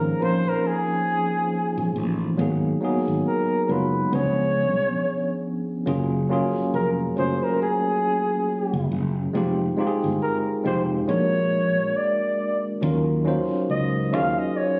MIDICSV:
0, 0, Header, 1, 5, 480
1, 0, Start_track
1, 0, Tempo, 869565
1, 1312, Time_signature, 4, 2, 24, 8
1, 8168, End_track
2, 0, Start_track
2, 0, Title_t, "Flugelhorn"
2, 0, Program_c, 0, 56
2, 0, Note_on_c, 0, 70, 83
2, 127, Note_on_c, 0, 72, 98
2, 135, Note_off_c, 0, 70, 0
2, 269, Note_on_c, 0, 70, 88
2, 278, Note_off_c, 0, 72, 0
2, 370, Note_on_c, 0, 68, 92
2, 378, Note_off_c, 0, 70, 0
2, 1081, Note_off_c, 0, 68, 0
2, 1806, Note_on_c, 0, 70, 78
2, 2016, Note_off_c, 0, 70, 0
2, 2016, Note_on_c, 0, 70, 66
2, 2047, Note_on_c, 0, 71, 79
2, 2055, Note_off_c, 0, 70, 0
2, 2287, Note_on_c, 0, 73, 90
2, 2295, Note_off_c, 0, 71, 0
2, 2999, Note_off_c, 0, 73, 0
2, 3722, Note_on_c, 0, 70, 72
2, 3810, Note_off_c, 0, 70, 0
2, 3963, Note_on_c, 0, 72, 88
2, 4104, Note_on_c, 0, 70, 81
2, 4113, Note_off_c, 0, 72, 0
2, 4198, Note_off_c, 0, 70, 0
2, 4207, Note_on_c, 0, 68, 83
2, 4898, Note_off_c, 0, 68, 0
2, 5642, Note_on_c, 0, 70, 73
2, 5731, Note_off_c, 0, 70, 0
2, 5884, Note_on_c, 0, 72, 73
2, 5972, Note_off_c, 0, 72, 0
2, 6123, Note_on_c, 0, 73, 95
2, 6604, Note_on_c, 0, 74, 87
2, 6612, Note_off_c, 0, 73, 0
2, 6978, Note_off_c, 0, 74, 0
2, 7566, Note_on_c, 0, 75, 89
2, 7805, Note_on_c, 0, 77, 87
2, 7814, Note_off_c, 0, 75, 0
2, 7944, Note_on_c, 0, 75, 94
2, 7952, Note_off_c, 0, 77, 0
2, 8043, Note_on_c, 0, 73, 82
2, 8051, Note_off_c, 0, 75, 0
2, 8168, Note_off_c, 0, 73, 0
2, 8168, End_track
3, 0, Start_track
3, 0, Title_t, "Tine electric piano"
3, 0, Program_c, 1, 4
3, 0, Control_c, 1, 64, 127
3, 0, Note_on_c, 1, 53, 83
3, 0, Note_on_c, 1, 58, 73
3, 0, Note_on_c, 1, 60, 74
3, 0, Note_on_c, 1, 61, 77
3, 0, Note_on_c, 1, 63, 92
3, 0, Note_on_c, 1, 68, 91
3, 81, Note_off_c, 1, 53, 0
3, 83, Note_off_c, 1, 58, 0
3, 86, Note_off_c, 1, 60, 0
3, 89, Note_off_c, 1, 61, 0
3, 91, Note_off_c, 1, 63, 0
3, 109, Note_on_c, 1, 53, 71
3, 116, Note_on_c, 1, 58, 60
3, 119, Note_on_c, 1, 60, 58
3, 124, Note_on_c, 1, 61, 54
3, 129, Note_on_c, 1, 65, 68
3, 1010, Note_off_c, 1, 53, 0
3, 1013, Note_off_c, 1, 58, 0
3, 1015, Note_off_c, 1, 60, 0
3, 1017, Note_off_c, 1, 61, 0
3, 1020, Note_off_c, 1, 65, 0
3, 1311, Note_on_c, 1, 54, 73
3, 1315, Note_on_c, 1, 58, 69
3, 1320, Note_off_c, 1, 68, 0
3, 1320, Control_c, 1, 64, 0
3, 1320, Note_on_c, 1, 59, 66
3, 1326, Note_on_c, 1, 63, 70
3, 1331, Note_on_c, 1, 68, 78
3, 1415, Control_c, 1, 64, 127
3, 1536, Note_off_c, 1, 54, 0
3, 1538, Note_off_c, 1, 58, 0
3, 1541, Note_off_c, 1, 59, 0
3, 1544, Note_off_c, 1, 63, 0
3, 1546, Note_off_c, 1, 68, 0
3, 1551, Note_on_c, 1, 54, 82
3, 1555, Note_on_c, 1, 58, 67
3, 1561, Note_on_c, 1, 59, 72
3, 1566, Note_on_c, 1, 63, 71
3, 1570, Note_on_c, 1, 68, 87
3, 2001, Note_off_c, 1, 54, 0
3, 2003, Note_off_c, 1, 58, 0
3, 2006, Note_off_c, 1, 59, 0
3, 2008, Note_off_c, 1, 63, 0
3, 2011, Note_off_c, 1, 68, 0
3, 2031, Note_on_c, 1, 54, 64
3, 2037, Note_on_c, 1, 56, 57
3, 2042, Note_on_c, 1, 59, 59
3, 2046, Note_on_c, 1, 63, 64
3, 2050, Note_on_c, 1, 65, 74
3, 2271, Note_off_c, 1, 59, 0
3, 2272, Note_off_c, 1, 54, 0
3, 2272, Note_on_c, 1, 50, 50
3, 2274, Note_off_c, 1, 56, 0
3, 2277, Note_on_c, 1, 59, 64
3, 2279, Note_off_c, 1, 63, 0
3, 2280, Control_c, 1, 64, 0
3, 2281, Note_off_c, 1, 65, 0
3, 2281, Note_on_c, 1, 61, 61
3, 2286, Note_on_c, 1, 62, 60
3, 2292, Note_on_c, 1, 68, 74
3, 2308, Note_on_c, 1, 53, 70
3, 2314, Note_off_c, 1, 50, 0
3, 2368, Control_c, 1, 64, 127
3, 3174, Note_off_c, 1, 59, 0
3, 3176, Note_off_c, 1, 61, 0
3, 3178, Note_off_c, 1, 62, 0
3, 3181, Note_off_c, 1, 68, 0
3, 3189, Note_off_c, 1, 53, 0
3, 3232, Note_on_c, 1, 54, 64
3, 3235, Note_on_c, 1, 58, 70
3, 3240, Control_c, 1, 64, 0
3, 3240, Note_on_c, 1, 61, 69
3, 3245, Note_on_c, 1, 65, 66
3, 3251, Note_on_c, 1, 68, 77
3, 3348, Control_c, 1, 64, 127
3, 3457, Note_off_c, 1, 54, 0
3, 3459, Note_off_c, 1, 58, 0
3, 3461, Note_off_c, 1, 61, 0
3, 3464, Note_off_c, 1, 65, 0
3, 3466, Note_off_c, 1, 68, 0
3, 3472, Note_on_c, 1, 54, 73
3, 3478, Note_on_c, 1, 58, 76
3, 3482, Note_on_c, 1, 61, 70
3, 3486, Note_on_c, 1, 65, 75
3, 3492, Note_on_c, 1, 68, 87
3, 3922, Note_off_c, 1, 54, 0
3, 3925, Note_off_c, 1, 58, 0
3, 3927, Note_off_c, 1, 61, 0
3, 3929, Note_off_c, 1, 65, 0
3, 3932, Note_off_c, 1, 68, 0
3, 3952, Note_on_c, 1, 54, 68
3, 3956, Note_on_c, 1, 57, 53
3, 3961, Note_on_c, 1, 61, 58
3, 3966, Note_on_c, 1, 65, 59
3, 3971, Note_on_c, 1, 68, 66
3, 3991, Note_on_c, 1, 58, 60
3, 3996, Note_off_c, 1, 57, 0
3, 4851, Note_off_c, 1, 54, 0
3, 4856, Note_off_c, 1, 61, 0
3, 4858, Note_off_c, 1, 65, 0
3, 4861, Note_off_c, 1, 68, 0
3, 4871, Note_off_c, 1, 58, 0
3, 5152, Note_on_c, 1, 56, 74
3, 5158, Note_on_c, 1, 60, 73
3, 5159, Control_c, 1, 64, 0
3, 5162, Note_on_c, 1, 63, 72
3, 5167, Note_on_c, 1, 65, 62
3, 5172, Note_on_c, 1, 67, 86
3, 5261, Control_c, 1, 64, 127
3, 5377, Note_off_c, 1, 56, 0
3, 5380, Note_off_c, 1, 60, 0
3, 5382, Note_off_c, 1, 63, 0
3, 5384, Note_off_c, 1, 65, 0
3, 5387, Note_off_c, 1, 67, 0
3, 5392, Note_on_c, 1, 56, 77
3, 5398, Note_on_c, 1, 60, 68
3, 5402, Note_on_c, 1, 63, 78
3, 5406, Note_on_c, 1, 65, 70
3, 5412, Note_on_c, 1, 67, 68
3, 5444, Note_off_c, 1, 67, 0
3, 5448, Note_on_c, 1, 68, 98
3, 5842, Note_off_c, 1, 56, 0
3, 5845, Note_off_c, 1, 60, 0
3, 5847, Note_off_c, 1, 63, 0
3, 5849, Note_off_c, 1, 65, 0
3, 5870, Note_off_c, 1, 68, 0
3, 5872, Note_on_c, 1, 56, 64
3, 5876, Note_on_c, 1, 60, 66
3, 5881, Note_on_c, 1, 63, 60
3, 5885, Note_on_c, 1, 65, 58
3, 5891, Note_on_c, 1, 67, 65
3, 6106, Note_off_c, 1, 56, 0
3, 6113, Note_on_c, 1, 56, 69
3, 6114, Note_off_c, 1, 60, 0
3, 6117, Note_off_c, 1, 63, 0
3, 6118, Note_on_c, 1, 58, 64
3, 6119, Note_off_c, 1, 65, 0
3, 6119, Control_c, 1, 64, 0
3, 6122, Note_off_c, 1, 67, 0
3, 6122, Note_on_c, 1, 62, 65
3, 6126, Note_on_c, 1, 66, 63
3, 6132, Note_on_c, 1, 70, 71
3, 6201, Control_c, 1, 64, 127
3, 7012, Note_off_c, 1, 56, 0
3, 7014, Note_off_c, 1, 58, 0
3, 7016, Note_off_c, 1, 62, 0
3, 7018, Note_off_c, 1, 66, 0
3, 7021, Note_off_c, 1, 70, 0
3, 7072, Note_on_c, 1, 54, 68
3, 7077, Note_on_c, 1, 61, 70
3, 7079, Control_c, 1, 64, 0
3, 7081, Note_on_c, 1, 63, 70
3, 7086, Note_on_c, 1, 65, 70
3, 7092, Note_on_c, 1, 70, 76
3, 7160, Control_c, 1, 64, 127
3, 7297, Note_off_c, 1, 54, 0
3, 7300, Note_off_c, 1, 61, 0
3, 7302, Note_off_c, 1, 63, 0
3, 7304, Note_off_c, 1, 65, 0
3, 7307, Note_off_c, 1, 70, 0
3, 7311, Note_on_c, 1, 54, 77
3, 7316, Note_on_c, 1, 61, 69
3, 7321, Note_on_c, 1, 63, 71
3, 7325, Note_on_c, 1, 65, 74
3, 7330, Note_on_c, 1, 72, 94
3, 7761, Note_off_c, 1, 54, 0
3, 7764, Note_off_c, 1, 61, 0
3, 7766, Note_off_c, 1, 63, 0
3, 7768, Note_off_c, 1, 65, 0
3, 7771, Note_off_c, 1, 72, 0
3, 7792, Note_on_c, 1, 54, 65
3, 7798, Note_on_c, 1, 61, 63
3, 7803, Note_on_c, 1, 63, 62
3, 7807, Note_on_c, 1, 65, 58
3, 7812, Note_on_c, 1, 68, 82
3, 8168, Note_off_c, 1, 54, 0
3, 8168, Note_off_c, 1, 61, 0
3, 8168, Note_off_c, 1, 63, 0
3, 8168, Note_off_c, 1, 65, 0
3, 8168, Note_off_c, 1, 68, 0
3, 8168, End_track
4, 0, Start_track
4, 0, Title_t, "Fretless electric bass"
4, 0, Program_c, 2, 35
4, 0, Note_on_c, 2, 32, 77
4, 66, Note_off_c, 2, 32, 0
4, 121, Note_on_c, 2, 34, 77
4, 229, Note_off_c, 2, 34, 0
4, 980, Note_on_c, 2, 34, 71
4, 1056, Note_off_c, 2, 34, 0
4, 1080, Note_on_c, 2, 33, 73
4, 1267, Note_off_c, 2, 33, 0
4, 1318, Note_on_c, 2, 32, 98
4, 1506, Note_off_c, 2, 32, 0
4, 1699, Note_on_c, 2, 32, 72
4, 1775, Note_off_c, 2, 32, 0
4, 2038, Note_on_c, 2, 30, 66
4, 2226, Note_off_c, 2, 30, 0
4, 2278, Note_on_c, 2, 37, 96
4, 2656, Note_off_c, 2, 37, 0
4, 3240, Note_on_c, 2, 30, 94
4, 3538, Note_off_c, 2, 30, 0
4, 3719, Note_on_c, 2, 29, 71
4, 3907, Note_off_c, 2, 29, 0
4, 3962, Note_on_c, 2, 30, 69
4, 4069, Note_off_c, 2, 30, 0
4, 4821, Note_on_c, 2, 30, 82
4, 4897, Note_off_c, 2, 30, 0
4, 4921, Note_on_c, 2, 30, 80
4, 5108, Note_off_c, 2, 30, 0
4, 5160, Note_on_c, 2, 29, 91
4, 5347, Note_off_c, 2, 29, 0
4, 5541, Note_on_c, 2, 31, 73
4, 5617, Note_off_c, 2, 31, 0
4, 5881, Note_on_c, 2, 29, 75
4, 6068, Note_off_c, 2, 29, 0
4, 6119, Note_on_c, 2, 34, 92
4, 6497, Note_off_c, 2, 34, 0
4, 7079, Note_on_c, 2, 39, 104
4, 7378, Note_off_c, 2, 39, 0
4, 7559, Note_on_c, 2, 37, 71
4, 7801, Note_off_c, 2, 37, 0
4, 7801, Note_on_c, 2, 39, 80
4, 7909, Note_off_c, 2, 39, 0
4, 8168, End_track
5, 0, Start_track
5, 0, Title_t, "Muted fretless electric bass strokes"
5, 1559, Note_on_c, 9, 29, 38
5, 1614, Note_off_c, 9, 29, 0
5, 3622, Note_on_c, 9, 29, 38
5, 3677, Note_off_c, 9, 29, 0
5, 5398, Note_on_c, 9, 29, 38
5, 5454, Note_off_c, 9, 29, 0
5, 7460, Note_on_c, 9, 29, 43
5, 7516, Note_off_c, 9, 29, 0
5, 8168, End_track
0, 0, End_of_file